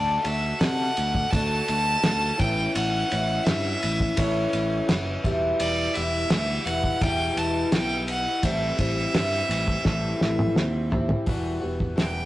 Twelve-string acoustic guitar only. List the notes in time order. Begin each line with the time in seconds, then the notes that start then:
Already playing: D3 A3 D4 F#4
0.24 A3 D4 F#4
0.60 D3 A3 D4 F#4
1.32 D3 A3 D4 F#4
2.02 D3 A3 D4 F#4
2.37 A2 E3 B3 C#4 E4
3.09 B3 C#4 E4
3.46 E3 B3 C#4 E4
4.16 A2 E3 B3 C#4 E4
4.86 E3 B3 C#4 E4
5.23 E2 B2 E3 G3 B3 E4
5.94 E3 G3 B3 E4
6.28 E3 G3 B3 E4
6.65 E3 G3 B3 E4
7.00 E2 B2 E3 G3 B3 E4
7.74 G3 B3 E4
8.42 A2 E3 G3 C4 E4
8.77 G3 C4 E4
9.13 E3 G3 C4 E4
9.85 A2 E3 G3 C4 E4
10.57 G3 C4 E4
10.90 G3 C4 E4
11.26 E2 B2 E3 G3 B3 F#4
11.61 E3 G3 B3 F#4
11.96 E2 B2 E3 G3 B3